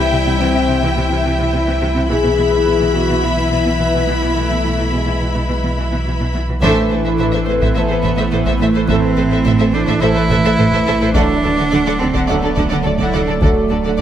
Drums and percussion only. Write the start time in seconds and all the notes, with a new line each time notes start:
6.63 taiko
7.61 taiko
8.04 taiko
8.46 taiko
8.88 taiko
9.87 taiko
10.30 taiko
10.72 taiko
11.15 taiko
12.14 taiko
12.57 taiko
12.99 taiko
13.42 taiko